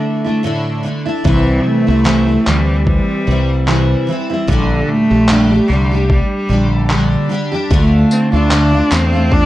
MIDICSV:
0, 0, Header, 1, 5, 480
1, 0, Start_track
1, 0, Tempo, 806452
1, 745, Time_signature, 4, 2, 24, 8
1, 5628, End_track
2, 0, Start_track
2, 0, Title_t, "Steel-string acoustic guitar"
2, 0, Program_c, 0, 25
2, 0, Note_on_c, 0, 57, 38
2, 0, Note_on_c, 0, 62, 45
2, 0, Note_on_c, 0, 64, 44
2, 138, Note_off_c, 0, 64, 0
2, 145, Note_on_c, 0, 64, 56
2, 146, Note_off_c, 0, 62, 0
2, 149, Note_off_c, 0, 57, 0
2, 153, Note_on_c, 0, 62, 49
2, 157, Note_on_c, 0, 57, 46
2, 254, Note_off_c, 0, 57, 0
2, 255, Note_off_c, 0, 62, 0
2, 256, Note_on_c, 0, 45, 67
2, 257, Note_off_c, 0, 64, 0
2, 261, Note_on_c, 0, 57, 80
2, 262, Note_on_c, 0, 50, 73
2, 262, Note_on_c, 0, 62, 82
2, 264, Note_on_c, 0, 64, 76
2, 487, Note_off_c, 0, 50, 0
2, 491, Note_off_c, 0, 57, 0
2, 494, Note_on_c, 0, 50, 54
2, 496, Note_off_c, 0, 62, 0
2, 498, Note_on_c, 0, 57, 56
2, 499, Note_off_c, 0, 64, 0
2, 501, Note_off_c, 0, 45, 0
2, 503, Note_on_c, 0, 62, 60
2, 506, Note_on_c, 0, 64, 60
2, 622, Note_off_c, 0, 64, 0
2, 626, Note_off_c, 0, 62, 0
2, 629, Note_on_c, 0, 64, 57
2, 631, Note_off_c, 0, 50, 0
2, 633, Note_off_c, 0, 57, 0
2, 633, Note_on_c, 0, 62, 45
2, 640, Note_on_c, 0, 57, 37
2, 740, Note_off_c, 0, 57, 0
2, 740, Note_off_c, 0, 62, 0
2, 740, Note_on_c, 0, 48, 74
2, 741, Note_off_c, 0, 64, 0
2, 741, Note_on_c, 0, 52, 67
2, 742, Note_on_c, 0, 55, 78
2, 743, Note_on_c, 0, 60, 82
2, 747, Note_on_c, 0, 64, 94
2, 1104, Note_off_c, 0, 64, 0
2, 1111, Note_off_c, 0, 60, 0
2, 1112, Note_on_c, 0, 64, 56
2, 1115, Note_off_c, 0, 48, 0
2, 1116, Note_off_c, 0, 52, 0
2, 1116, Note_off_c, 0, 55, 0
2, 1118, Note_on_c, 0, 60, 41
2, 1123, Note_on_c, 0, 55, 39
2, 1212, Note_off_c, 0, 55, 0
2, 1214, Note_on_c, 0, 48, 69
2, 1215, Note_on_c, 0, 52, 77
2, 1216, Note_off_c, 0, 60, 0
2, 1217, Note_off_c, 0, 64, 0
2, 1219, Note_on_c, 0, 55, 76
2, 1223, Note_on_c, 0, 60, 73
2, 1224, Note_on_c, 0, 64, 88
2, 1341, Note_off_c, 0, 64, 0
2, 1348, Note_off_c, 0, 60, 0
2, 1348, Note_on_c, 0, 64, 48
2, 1352, Note_off_c, 0, 48, 0
2, 1353, Note_off_c, 0, 52, 0
2, 1353, Note_off_c, 0, 55, 0
2, 1355, Note_on_c, 0, 60, 45
2, 1360, Note_on_c, 0, 55, 41
2, 1458, Note_off_c, 0, 55, 0
2, 1461, Note_off_c, 0, 64, 0
2, 1462, Note_on_c, 0, 52, 57
2, 1463, Note_off_c, 0, 60, 0
2, 1465, Note_on_c, 0, 55, 66
2, 1470, Note_on_c, 0, 60, 66
2, 1472, Note_on_c, 0, 64, 61
2, 1938, Note_off_c, 0, 52, 0
2, 1945, Note_off_c, 0, 60, 0
2, 1945, Note_on_c, 0, 52, 59
2, 1946, Note_off_c, 0, 55, 0
2, 1947, Note_off_c, 0, 64, 0
2, 1948, Note_on_c, 0, 55, 63
2, 1952, Note_on_c, 0, 60, 60
2, 1955, Note_on_c, 0, 64, 64
2, 2175, Note_off_c, 0, 52, 0
2, 2178, Note_off_c, 0, 55, 0
2, 2180, Note_on_c, 0, 48, 69
2, 2181, Note_off_c, 0, 60, 0
2, 2183, Note_off_c, 0, 64, 0
2, 2183, Note_on_c, 0, 52, 71
2, 2186, Note_on_c, 0, 55, 76
2, 2188, Note_on_c, 0, 60, 77
2, 2190, Note_on_c, 0, 64, 81
2, 2413, Note_off_c, 0, 52, 0
2, 2417, Note_off_c, 0, 55, 0
2, 2420, Note_on_c, 0, 52, 58
2, 2423, Note_off_c, 0, 60, 0
2, 2424, Note_off_c, 0, 48, 0
2, 2424, Note_on_c, 0, 55, 52
2, 2425, Note_off_c, 0, 64, 0
2, 2430, Note_on_c, 0, 60, 68
2, 2432, Note_on_c, 0, 64, 73
2, 2549, Note_off_c, 0, 64, 0
2, 2554, Note_off_c, 0, 60, 0
2, 2556, Note_off_c, 0, 52, 0
2, 2557, Note_on_c, 0, 64, 57
2, 2558, Note_off_c, 0, 55, 0
2, 2562, Note_on_c, 0, 60, 45
2, 2570, Note_on_c, 0, 55, 47
2, 2663, Note_on_c, 0, 46, 79
2, 2664, Note_off_c, 0, 55, 0
2, 2666, Note_off_c, 0, 64, 0
2, 2667, Note_on_c, 0, 50, 83
2, 2668, Note_off_c, 0, 60, 0
2, 2671, Note_on_c, 0, 55, 85
2, 2672, Note_on_c, 0, 67, 83
2, 2673, Note_on_c, 0, 62, 83
2, 3031, Note_off_c, 0, 67, 0
2, 3037, Note_off_c, 0, 46, 0
2, 3037, Note_off_c, 0, 62, 0
2, 3038, Note_on_c, 0, 67, 48
2, 3039, Note_off_c, 0, 50, 0
2, 3041, Note_off_c, 0, 55, 0
2, 3044, Note_on_c, 0, 62, 47
2, 3051, Note_on_c, 0, 55, 43
2, 3140, Note_off_c, 0, 55, 0
2, 3144, Note_off_c, 0, 62, 0
2, 3145, Note_on_c, 0, 46, 74
2, 3147, Note_off_c, 0, 67, 0
2, 3147, Note_on_c, 0, 50, 83
2, 3148, Note_on_c, 0, 55, 81
2, 3151, Note_on_c, 0, 62, 77
2, 3153, Note_on_c, 0, 67, 96
2, 3270, Note_off_c, 0, 67, 0
2, 3274, Note_off_c, 0, 62, 0
2, 3277, Note_on_c, 0, 67, 48
2, 3278, Note_off_c, 0, 46, 0
2, 3279, Note_off_c, 0, 50, 0
2, 3279, Note_off_c, 0, 55, 0
2, 3281, Note_on_c, 0, 62, 42
2, 3288, Note_on_c, 0, 55, 40
2, 3379, Note_off_c, 0, 55, 0
2, 3380, Note_on_c, 0, 50, 60
2, 3384, Note_off_c, 0, 62, 0
2, 3386, Note_off_c, 0, 67, 0
2, 3387, Note_on_c, 0, 55, 60
2, 3391, Note_on_c, 0, 62, 65
2, 3392, Note_on_c, 0, 67, 58
2, 3512, Note_off_c, 0, 67, 0
2, 3515, Note_off_c, 0, 50, 0
2, 3519, Note_off_c, 0, 55, 0
2, 3519, Note_on_c, 0, 67, 46
2, 3521, Note_off_c, 0, 62, 0
2, 3528, Note_on_c, 0, 62, 46
2, 3534, Note_on_c, 0, 55, 38
2, 3861, Note_off_c, 0, 55, 0
2, 3862, Note_on_c, 0, 50, 61
2, 3867, Note_off_c, 0, 62, 0
2, 3867, Note_off_c, 0, 67, 0
2, 3869, Note_on_c, 0, 55, 66
2, 3874, Note_on_c, 0, 62, 63
2, 3877, Note_on_c, 0, 67, 57
2, 4100, Note_off_c, 0, 50, 0
2, 4103, Note_off_c, 0, 55, 0
2, 4105, Note_off_c, 0, 62, 0
2, 4106, Note_on_c, 0, 46, 74
2, 4107, Note_off_c, 0, 67, 0
2, 4107, Note_on_c, 0, 50, 83
2, 4110, Note_on_c, 0, 55, 79
2, 4112, Note_on_c, 0, 62, 78
2, 4114, Note_on_c, 0, 67, 85
2, 4335, Note_off_c, 0, 50, 0
2, 4339, Note_off_c, 0, 55, 0
2, 4342, Note_on_c, 0, 50, 59
2, 4344, Note_off_c, 0, 62, 0
2, 4345, Note_off_c, 0, 46, 0
2, 4346, Note_on_c, 0, 55, 56
2, 4348, Note_off_c, 0, 67, 0
2, 4351, Note_on_c, 0, 62, 62
2, 4355, Note_on_c, 0, 67, 74
2, 4468, Note_off_c, 0, 67, 0
2, 4475, Note_off_c, 0, 50, 0
2, 4475, Note_off_c, 0, 62, 0
2, 4475, Note_on_c, 0, 67, 52
2, 4478, Note_off_c, 0, 55, 0
2, 4482, Note_on_c, 0, 62, 47
2, 4490, Note_on_c, 0, 55, 43
2, 4584, Note_off_c, 0, 62, 0
2, 4584, Note_off_c, 0, 67, 0
2, 4586, Note_on_c, 0, 50, 88
2, 4588, Note_off_c, 0, 55, 0
2, 4590, Note_on_c, 0, 57, 84
2, 4591, Note_on_c, 0, 62, 95
2, 4594, Note_on_c, 0, 65, 82
2, 4945, Note_off_c, 0, 65, 0
2, 4952, Note_on_c, 0, 65, 52
2, 4954, Note_off_c, 0, 62, 0
2, 4957, Note_off_c, 0, 50, 0
2, 4959, Note_off_c, 0, 57, 0
2, 4961, Note_on_c, 0, 62, 53
2, 4965, Note_on_c, 0, 57, 49
2, 5059, Note_off_c, 0, 57, 0
2, 5062, Note_off_c, 0, 62, 0
2, 5062, Note_off_c, 0, 65, 0
2, 5062, Note_on_c, 0, 50, 82
2, 5066, Note_on_c, 0, 57, 81
2, 5069, Note_on_c, 0, 62, 85
2, 5071, Note_on_c, 0, 65, 93
2, 5185, Note_off_c, 0, 65, 0
2, 5190, Note_off_c, 0, 62, 0
2, 5193, Note_on_c, 0, 65, 53
2, 5194, Note_off_c, 0, 50, 0
2, 5197, Note_off_c, 0, 57, 0
2, 5198, Note_on_c, 0, 62, 40
2, 5205, Note_on_c, 0, 57, 37
2, 5296, Note_off_c, 0, 57, 0
2, 5297, Note_on_c, 0, 50, 58
2, 5298, Note_off_c, 0, 62, 0
2, 5302, Note_off_c, 0, 65, 0
2, 5303, Note_on_c, 0, 57, 68
2, 5309, Note_on_c, 0, 65, 65
2, 5424, Note_off_c, 0, 65, 0
2, 5431, Note_on_c, 0, 65, 45
2, 5432, Note_off_c, 0, 50, 0
2, 5435, Note_off_c, 0, 57, 0
2, 5438, Note_on_c, 0, 62, 42
2, 5443, Note_on_c, 0, 57, 39
2, 5628, Note_off_c, 0, 57, 0
2, 5628, Note_off_c, 0, 62, 0
2, 5628, Note_off_c, 0, 65, 0
2, 5628, End_track
3, 0, Start_track
3, 0, Title_t, "Cello"
3, 0, Program_c, 1, 42
3, 0, Note_on_c, 1, 50, 83
3, 270, Note_off_c, 1, 50, 0
3, 754, Note_on_c, 1, 52, 83
3, 994, Note_on_c, 1, 57, 102
3, 1003, Note_off_c, 1, 52, 0
3, 1475, Note_on_c, 1, 55, 85
3, 1484, Note_off_c, 1, 57, 0
3, 1708, Note_off_c, 1, 55, 0
3, 1711, Note_on_c, 1, 55, 81
3, 2166, Note_off_c, 1, 55, 0
3, 2677, Note_on_c, 1, 50, 90
3, 2907, Note_on_c, 1, 57, 110
3, 2916, Note_off_c, 1, 50, 0
3, 3382, Note_on_c, 1, 55, 86
3, 3391, Note_off_c, 1, 57, 0
3, 3624, Note_off_c, 1, 55, 0
3, 3629, Note_on_c, 1, 55, 82
3, 4083, Note_off_c, 1, 55, 0
3, 4595, Note_on_c, 1, 57, 85
3, 4837, Note_on_c, 1, 60, 77
3, 4846, Note_off_c, 1, 57, 0
3, 4962, Note_off_c, 1, 60, 0
3, 4966, Note_on_c, 1, 62, 83
3, 5312, Note_on_c, 1, 60, 83
3, 5321, Note_off_c, 1, 62, 0
3, 5553, Note_on_c, 1, 62, 101
3, 5562, Note_off_c, 1, 60, 0
3, 5628, Note_off_c, 1, 62, 0
3, 5628, End_track
4, 0, Start_track
4, 0, Title_t, "Fretless electric bass"
4, 0, Program_c, 2, 35
4, 745, Note_on_c, 2, 36, 99
4, 942, Note_off_c, 2, 36, 0
4, 1120, Note_on_c, 2, 36, 100
4, 1405, Note_off_c, 2, 36, 0
4, 1469, Note_on_c, 2, 38, 79
4, 1773, Note_off_c, 2, 38, 0
4, 1950, Note_on_c, 2, 36, 96
4, 2343, Note_off_c, 2, 36, 0
4, 2668, Note_on_c, 2, 34, 108
4, 2865, Note_off_c, 2, 34, 0
4, 3042, Note_on_c, 2, 34, 92
4, 3326, Note_off_c, 2, 34, 0
4, 3390, Note_on_c, 2, 36, 90
4, 3693, Note_off_c, 2, 36, 0
4, 3865, Note_on_c, 2, 34, 93
4, 4259, Note_off_c, 2, 34, 0
4, 4589, Note_on_c, 2, 38, 109
4, 4784, Note_off_c, 2, 38, 0
4, 4959, Note_on_c, 2, 38, 88
4, 5243, Note_off_c, 2, 38, 0
4, 5307, Note_on_c, 2, 40, 83
4, 5610, Note_off_c, 2, 40, 0
4, 5628, End_track
5, 0, Start_track
5, 0, Title_t, "Drums"
5, 745, Note_on_c, 9, 36, 104
5, 805, Note_off_c, 9, 36, 0
5, 1224, Note_on_c, 9, 39, 97
5, 1284, Note_off_c, 9, 39, 0
5, 1470, Note_on_c, 9, 39, 93
5, 1529, Note_off_c, 9, 39, 0
5, 1707, Note_on_c, 9, 36, 96
5, 1766, Note_off_c, 9, 36, 0
5, 2188, Note_on_c, 9, 39, 103
5, 2248, Note_off_c, 9, 39, 0
5, 2668, Note_on_c, 9, 36, 102
5, 2727, Note_off_c, 9, 36, 0
5, 3146, Note_on_c, 9, 39, 104
5, 3205, Note_off_c, 9, 39, 0
5, 3629, Note_on_c, 9, 36, 98
5, 3688, Note_off_c, 9, 36, 0
5, 4106, Note_on_c, 9, 39, 106
5, 4166, Note_off_c, 9, 39, 0
5, 4589, Note_on_c, 9, 36, 110
5, 4649, Note_off_c, 9, 36, 0
5, 4828, Note_on_c, 9, 54, 66
5, 4888, Note_off_c, 9, 54, 0
5, 5066, Note_on_c, 9, 39, 107
5, 5126, Note_off_c, 9, 39, 0
5, 5307, Note_on_c, 9, 39, 96
5, 5307, Note_on_c, 9, 54, 68
5, 5366, Note_off_c, 9, 39, 0
5, 5367, Note_off_c, 9, 54, 0
5, 5546, Note_on_c, 9, 36, 101
5, 5605, Note_off_c, 9, 36, 0
5, 5628, End_track
0, 0, End_of_file